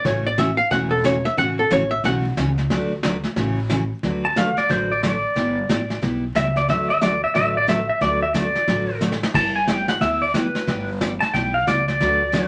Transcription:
0.04 upright bass A1, steel-string acoustic guitar C#3 E3 A3 C#4 F#4, hollow-body jazz guitar C#5, brush sweep, kick, snare
0.26 hollow-body jazz guitar D5
0.38 steel-string acoustic guitar C#3 E3 A3 C#4 F#4, hollow-body jazz guitar E5, kick, snare, hi-hat pedal
0.57 hollow-body jazz guitar F5
0.70 upright bass E1, steel-string acoustic guitar C#3 E3 A3 C#4 F#4, hollow-body jazz guitar F#5, brush sweep, kick, snare
0.91 hollow-body jazz guitar A4
1.04 steel-string acoustic guitar C#3 E3 A3 C#4 F#4, hollow-body jazz guitar C#5, kick, snare, hi-hat pedal
1.25 hollow-body jazz guitar E5, snare
1.37 upright bass A1, steel-string acoustic guitar C#3 E3 A3 C#4 F#4, hollow-body jazz guitar F#5, brush sweep, kick, snare
1.59 hollow-body jazz guitar A4
1.70 upright bass A1, steel-string acoustic guitar C#3 E3 A3 C#4 F#4, hollow-body jazz guitar C#5, kick, snare, hi-hat pedal
1.91 hollow-body jazz guitar E5
2.04 upright bass B1, steel-string acoustic guitar C#3 E3 A3 C#4 F#4, hollow-body jazz guitar F#5, brush sweep, kick, snare
2.37 upright bass C#2, steel-string acoustic guitar C#3 E3 A3 C#4 F#4, kick, snare, hi-hat pedal
2.58 snare
2.70 upright bass D2, steel-string acoustic guitar D3 F#3 A3 D4 F#4 B4, brush sweep, kick, snare
3.03 steel-string acoustic guitar D3 F#3 A3 D4 F#4 B4, kick, snare, hi-hat pedal
3.23 snare
3.36 upright bass A1, steel-string acoustic guitar C#3 E3 A3 C#4 F#4, brush sweep, kick, snare
3.69 steel-string acoustic guitar C#3 E3 A3 C#4 F#4, kick, snare, hi-hat pedal
4.03 upright bass D2, steel-string acoustic guitar D3 F#3 A3 D4 F#4 B4, brush sweep, kick, snare
4.25 pedal steel guitar A5
4.36 steel-string acoustic guitar D3 F#3 A3 D4 F#4 B4, pedal steel guitar F5, kick, snare, hi-hat pedal
4.57 pedal steel guitar D5, snare
4.69 upright bass A1, steel-string acoustic guitar D3 F#3 A3 D4 F#4 B4, pedal steel guitar C5, brush sweep, kick, snare
4.92 pedal steel guitar D5
5.03 steel-string acoustic guitar D3 F#3 A3 D4 F#4 B4, kick, snare, hi-hat pedal
5.35 upright bass G1, steel-string acoustic guitar G3 B3 E4 G4, brush sweep, kick, snare
5.69 upright bass A1, steel-string acoustic guitar G3 B3 E4 G4, kick, snare, hi-hat pedal
5.90 snare
6.02 upright bass B1, steel-string acoustic guitar G3 B3 E4 G4, brush sweep, kick, snare
6.35 upright bass C#2, steel-string acoustic guitar G3 B3 E4 G4, pedal steel guitar E5, kick, snare, hi-hat pedal
6.56 pedal steel guitar D5, snare
6.68 upright bass D2, steel-string acoustic guitar D3 F#3 A3 D4 F#4 B4, pedal steel guitar E5, brush sweep, kick, snare
6.90 pedal steel guitar E5
7.01 steel-string acoustic guitar D3 F#3 A3 D4 F#4 B4, pedal steel guitar D5, kick, snare, hi-hat pedal
7.24 pedal steel guitar E5
7.34 upright bass A1, steel-string acoustic guitar D3 F#3 A3 D4 F#4 B4, pedal steel guitar E5, brush sweep, kick, snare
7.57 pedal steel guitar D5
7.67 steel-string acoustic guitar D3 F#3 A3 D4 F#4 B4, pedal steel guitar E5, kick, snare, hi-hat pedal
7.89 pedal steel guitar E5
8.01 upright bass D2, steel-string acoustic guitar D3 F#3 A3 D4 F#4 B4, pedal steel guitar D5, brush sweep, kick, snare
8.23 pedal steel guitar E5
8.34 steel-string acoustic guitar D3 F#3 A3 D4 F#4 B4, pedal steel guitar D5, kick, snare, hi-hat pedal
8.55 snare
8.67 upright bass A1, steel-string acoustic guitar D3 F#3 A3 D4 F#4 B4, brush sweep, kick, snare
9.01 steel-string acoustic guitar D3 F#3 A3 D4 F#4 B4, snare, hi-hat pedal
9.12 snare
9.23 snare
9.34 upright bass G1, steel-string acoustic guitar G3 B3 E4 G4, pedal steel guitar A5, brush sweep, kick, snare, crash
9.56 pedal steel guitar G#5
9.67 steel-string acoustic guitar G3 B3 E4 G4, pedal steel guitar G5, kick, snare, hi-hat pedal
9.88 pedal steel guitar F#5, snare
10.01 upright bass D2, steel-string acoustic guitar G3 B3 E4 G4, pedal steel guitar E5, brush sweep, kick, snare
10.22 pedal steel guitar D5
10.34 steel-string acoustic guitar G3 B3 E4 G4, pedal steel guitar B4, kick, snare, hi-hat pedal
10.55 snare
10.67 upright bass G1, steel-string acoustic guitar G3 B3 E4 G4, brush sweep, kick, snare
11.01 steel-string acoustic guitar G3 B3 E4 G4, kick, snare, hi-hat pedal
11.20 pedal steel guitar A5, snare
11.33 upright bass B1, steel-string acoustic guitar G3 B3 E4 G4, pedal steel guitar G5, brush sweep, kick, snare
11.54 pedal steel guitar F5
11.67 upright bass C#2, steel-string acoustic guitar G3 B3 E4 G4, pedal steel guitar D5, kick, snare, hi-hat pedal
11.88 pedal steel guitar D5, snare
12.00 upright bass D2, steel-string acoustic guitar D3 F#3 A3 D4 F#4 B4, brush sweep, kick, snare
12.32 steel-string acoustic guitar D3 F#3 A3 D4 F#4 B4, kick, snare, hi-hat pedal

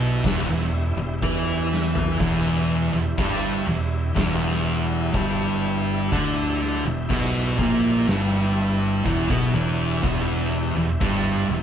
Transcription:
Already playing: fingered electric bass B1, distorted electric guitar B2 B3, tonewheel organ E4 G4 E5
0.24 fingered electric bass E1, distorted electric guitar E2 E3, kick, snare, crash
0.48 fingered electric bass E1, distorted electric guitar E2
0.97 fingered electric bass E1, distorted electric guitar E2
1.22 fingered electric bass E2, distorted electric guitar E3 E4, kick, crash
1.73 snare
1.95 floor tom
2.20 fingered electric bass E1, distorted electric guitar E2 E3, kick, crash
2.93 fingered electric bass E1, distorted electric guitar E2
3.17 fingered electric bass G1, distorted electric guitar G2 G3, kick, crash
3.67 fingered electric bass E1, distorted electric guitar E2
4.14 fingered electric bass E1, distorted electric guitar E2 E3, kick, snare, crash
5.14 fingered electric bass G1, distorted electric guitar G2 G3, kick, crash
6.11 fingered electric bass D2, distorted electric guitar D3 D4, kick, crash
6.63 snare
6.85 fingered electric bass E1, distorted electric guitar E2
7.09 fingered electric bass B1, distorted electric guitar B2 B3, kick, crash
7.58 fingered electric bass A#1, distorted electric guitar A#2 A#3, kick
8.07 fingered electric bass G1, distorted electric guitar G2 G3, snare, crash
9.05 fingered electric bass E1, distorted electric guitar E2 E3, kick, crash
9.29 fingered electric bass B1, distorted electric guitar B2 B3, kick
9.53 fingered electric bass E1, distorted electric guitar E2 E3
10.03 fingered electric bass E1, distorted electric guitar E2 E3, kick, crash
10.76 fingered electric bass E1, distorted electric guitar E2
11.00 fingered electric bass G1, distorted electric guitar G2 G3, kick, crash
11.49 fingered electric bass E1, distorted electric guitar E2

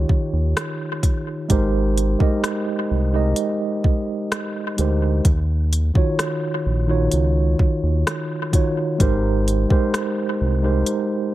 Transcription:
Already playing: tine electric piano D#3 D#4 F4 G4 C#5
0.09 kick
0.33 analog synth bass D#2
0.57 cross-stick, closed hi-hat
1.03 kick, closed hi-hat
1.48 analog synth bass G#1, tine electric piano G#3 D#4 G4 A#4 C5, kick, closed hi-hat
1.98 closed hi-hat
2.19 tine electric piano G#3 D#4 G4 A#4 D#5, kick
2.44 cross-stick, closed hi-hat
2.91 analog synth bass C2
3.12 tine electric piano G#3 D#4 G4 A#4 D#5
3.36 closed hi-hat
3.84 kick
4.32 cross-stick, closed hi-hat
4.77 analog synth bass D2, tine electric piano G#3 D#4 G4 A#4 C5, closed hi-hat
5.25 analog synth bass D#2, kick, closed hi-hat
5.73 closed hi-hat
5.94 tine electric piano D#3 D#4 F4 F#4 C#5, kick
6.19 cross-stick, closed hi-hat
6.66 analog synth bass A#1
6.88 tine electric piano D#3 D#4 F4 F#4 C#5
7.12 analog synth bass C#2, closed hi-hat
7.59 kick
7.83 analog synth bass D#2
8.07 cross-stick, closed hi-hat
8.52 tine electric piano D#3 D#4 F4 F#4 C#5, kick, closed hi-hat
8.98 analog synth bass G#1, tine electric piano G#3 D#4 G4 A#4 C5, kick, closed hi-hat
9.48 closed hi-hat
9.69 tine electric piano G#3 D#4 G4 A#4 C5, kick
9.94 cross-stick, closed hi-hat
10.41 analog synth bass C2
10.62 tine electric piano G#3 D#4 G4 A#4 C5
10.86 closed hi-hat

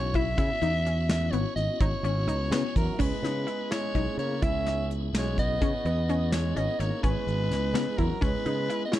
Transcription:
Already playing: fingered electric bass B1, tonewheel organ B3 C#4 E4 F#4, soprano saxophone C#5
0.14 synth arpeggio sound E4, soprano saxophone E5, kick, closed hi-hat
0.38 fingered electric bass C#3, synth arpeggio sound E4, kick, closed hi-hat
0.62 fingered electric bass E2, synth arpeggio sound D#4, closed hi-hat
0.86 synth arpeggio sound C#4, closed hi-hat
1.09 soprano saxophone E5, snare, closed hi-hat
1.31 fingered electric bass G#1, synth arpeggio sound B3, soprano saxophone C#5, closed hi-hat
1.56 fingered electric bass G#1, soprano saxophone D#5, closed hi-hat
1.80 fingered electric bass G#1, synth arpeggio sound D#4, soprano saxophone C#5, kick, closed hi-hat
2.03 fingered electric bass G#1, synth arpeggio sound C#4, closed hi-hat
2.27 fingered electric bass C#2, synth arpeggio sound D#4, closed hi-hat
2.51 fingered electric bass C#3, synth arpeggio sound B3, tonewheel organ G#5, snare, closed hi-hat
2.75 fingered electric bass E2, soprano saxophone A#4, tonewheel organ E5, kick, closed hi-hat
2.79 flugelhorn F#3
2.97 fingered electric bass C#2, tonewheel organ B3 C#4 E4 G#4, synth arpeggio sound C#4, soprano saxophone B4, kick, crash
3.03 flugelhorn G#3
3.23 fingered electric bass C#3, synth arpeggio sound D#4, snare, closed hi-hat
3.47 synth arpeggio sound E4, closed hi-hat
3.71 flugelhorn G#3, synth arpeggio sound E4, soprano saxophone C#5, snare, closed hi-hat
3.95 fingered electric bass B1, synth arpeggio sound D#4, kick, closed hi-hat
4.17 fingered electric bass C#3, flugelhorn A#3, soprano saxophone C#5, closed hi-hat
4.42 fingered electric bass C#2, flugelhorn C#4, synth arpeggio sound E4, soprano saxophone E5, kick, closed hi-hat
4.66 synth arpeggio sound D#4, snare, closed hi-hat
4.91 closed hi-hat
5.13 fingered electric bass B1, flugelhorn G#3, snare, closed hi-hat
5.18 soprano saxophone C#5
5.38 flugelhorn B3, soprano saxophone D#5, kick, closed hi-hat
5.61 fingered electric bass C#3, synth arpeggio sound C#4, kick, closed hi-hat
5.85 fingered electric bass E2, synth arpeggio sound B3, closed hi-hat
6.09 synth arpeggio sound C#4, closed hi-hat
6.32 flugelhorn G#3, soprano saxophone C#5, snare, closed hi-hat
6.56 fingered electric bass G#1, flugelhorn B3, synth arpeggio sound C#4, soprano saxophone D#5, closed hi-hat
6.79 fingered electric bass G#1, flugelhorn A#3, synth arpeggio sound D#4, soprano saxophone C#5, closed hi-hat
7.03 fingered electric bass G#1, flugelhorn G#3, synth arpeggio sound C#4, soprano saxophone B4, kick, closed hi-hat
7.27 fingered electric bass G#1, closed hi-hat
7.50 fingered electric bass C#2, snare, closed hi-hat
7.74 fingered electric bass C#3, synth arpeggio sound B3, snare, closed hi-hat
7.98 fingered electric bass E2, flugelhorn F#3, synth arpeggio sound E4, soprano saxophone A#4, kick, closed hi-hat
8.21 fingered electric bass C#2, flugelhorn G#3, tonewheel organ B3 C#4 E4 G#4, synth arpeggio sound C#4, soprano saxophone B4, kick, closed hi-hat
8.46 fingered electric bass C#3, synth arpeggio sound D#4, closed hi-hat
8.69 synth arpeggio sound E4, closed hi-hat
8.85 flugelhorn B3, soprano saxophone D#5
8.92 flugelhorn G#3, synth arpeggio sound E4, soprano saxophone C#5, snare, closed hi-hat

